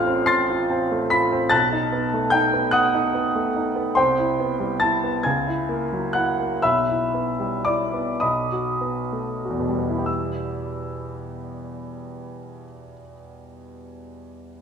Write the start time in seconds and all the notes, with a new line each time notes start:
Already playing: A1 A3 C4 F4 F5 G5 C6 F6 G6
0.06 C4
0.26 C6 A6 C7
0.49 F4
0.70 C4
0.91 A3
1.10 F4 B5 B6
1.32 C4
1.49 B1 A5 F#6 A6
1.73 D#4
1.92 B3
2.14 A3
2.30 D#4 G5 G6
2.53 B3
2.71 F#5 D#6 F#6
2.95 D#4
3.14 B3
3.35 A3
3.56 D#4
3.76 B3
3.95 C2 C5 G5 C6
4.18 E4
4.40 B3
4.60 G3
4.80 E4 A5 A6
5.04 B3
5.23 C#2 G#5 G#6
5.47 E4
5.69 A#3
5.93 F#3
6.13 E4 F#5 F#6
6.40 A#3
6.62 B1 E5 B5 E6
6.89 E4
7.14 B3
7.40 G3
7.65 E4 D5 D6
7.94 B3
8.20 B1 D#5 B5 D#6
8.52 F#4
8.81 B3
9.13 A3
9.45 F#4
9.50 E2
9.60 B2
9.69 G3
9.78 B3
9.89 E4
9.98 G4
10.06 E6